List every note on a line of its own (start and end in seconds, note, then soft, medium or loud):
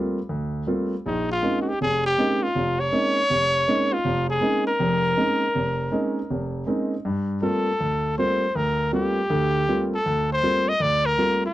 0.00 0.17 G3 medium
0.00 0.18 A3 soft
0.00 0.18 A#3 soft
0.00 0.18 C4 soft
0.00 0.18 F4 medium
0.29 0.62 D2 medium
0.67 0.93 G3 medium
0.67 0.93 A3 soft
0.67 0.93 A#3 soft
0.67 0.93 C4 soft
0.67 0.93 F4 medium
1.06 1.38 A#1 medium
1.06 1.29 D#4 medium
1.31 1.59 F4 medium
1.42 1.68 G#3 soft
1.42 1.68 A#3 soft
1.42 1.68 C4 soft
1.42 1.68 C#4 soft
1.42 1.68 D#4 medium
1.61 1.69 F#4 medium
1.68 1.80 G4 medium
1.81 2.13 F1 medium
1.81 2.04 G#4 medium
2.06 2.44 G4 medium
2.18 2.43 G#3 medium
2.18 2.44 A#3 soft
2.18 2.44 C4 soft
2.18 2.44 C#4 soft
2.18 2.44 D#4 medium
2.43 2.81 F4 medium
2.55 2.87 F1 medium
2.80 3.94 C#5 loud
2.92 3.18 G#3 soft
2.92 3.18 A#3 soft
2.92 3.18 C4 soft
2.92 3.18 C#4 soft
2.92 3.18 D#4 medium
3.30 3.62 F1 medium
3.68 3.93 G#3 soft
3.68 3.93 A#3 soft
3.68 3.93 C4 soft
3.68 3.94 C#4 soft
3.68 3.94 D#4 medium
3.93 4.29 F4 medium
4.05 4.37 F1 medium
4.30 4.65 G#4 medium
4.41 4.68 G#3 soft
4.41 4.68 A#3 soft
4.41 4.68 C4 soft
4.41 4.68 C#4 soft
4.41 4.68 D#4 medium
4.67 6.63 A#4 medium
4.80 5.12 F1 medium
4.80 5.12 F2 medium
5.17 5.43 G#3 medium
5.17 5.43 A#3 soft
5.17 5.43 C4 soft
5.17 5.43 C#4 soft
5.17 5.43 D#4 medium
5.55 5.88 F1 medium
5.92 6.18 G#3 soft
5.92 6.18 A#3 soft
5.92 6.18 C4 soft
5.92 6.18 C#4 soft
5.92 6.18 D#4 medium
6.30 6.63 F1 medium
6.67 6.93 G#3 soft
6.67 6.93 A#3 soft
6.67 6.93 C4 soft
6.67 6.93 C#4 soft
6.67 6.94 D#4 medium
7.05 7.38 G2 medium
7.42 7.68 G3 medium
7.42 7.68 A3 soft
7.42 7.69 A#3 soft
7.42 7.68 C4 soft
7.42 7.69 F4 medium
7.42 8.13 A4 medium
7.81 8.13 D2 medium
8.18 8.44 G3 soft
8.18 8.44 A3 soft
8.18 8.44 A#3 soft
8.18 8.44 C4 soft
8.18 8.44 F4 medium
8.18 8.57 C5 medium
8.56 8.88 D2 medium
8.56 8.93 A#4 medium
8.92 9.18 G3 soft
8.92 9.18 A3 soft
8.92 9.19 A#3 soft
8.92 9.19 C4 soft
8.92 9.19 F4 medium
8.92 9.89 G4 medium
9.30 9.63 D2 medium
9.30 9.63 D3 medium
9.68 9.94 G3 soft
9.68 9.94 A3 soft
9.68 9.94 A#3 soft
9.68 9.94 C4 soft
9.68 9.94 F4 medium
9.94 10.28 A4 medium
10.06 10.38 D2 medium
10.32 10.70 C5 loud
10.42 10.68 G3 soft
10.42 10.69 A3 soft
10.42 10.69 A#3 soft
10.42 10.69 C4 soft
10.42 10.69 F4 medium
10.69 10.83 D#5 medium
10.80 11.12 D2 medium
10.80 11.07 D5 loud
11.06 11.43 A#4 loud
11.18 11.43 G3 medium
11.18 11.44 A3 soft
11.18 11.44 A#3 soft
11.18 11.44 C4 soft
11.18 11.44 F4 medium
11.46 11.54 F4 medium